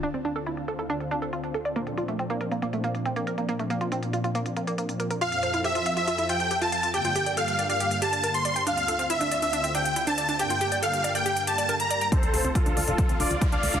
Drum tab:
HH |xxxxxxxxxxxxxxxx|xxxxxxxxxxxxxxxx|xxxxxxxxxxxxxxxx|xxxxxxxxxxxxxxxx|
BD |----------------|----------------|----------------|----------------|

HH |xxxxxxxxxxxxxxxx|xxxxxxxxxxxxxxxx|xxxxxxxxxxxxxxxx|xxoxxxoxxxoxxxox|
BD |----------------|----------------|----------------|o---o---o---o---|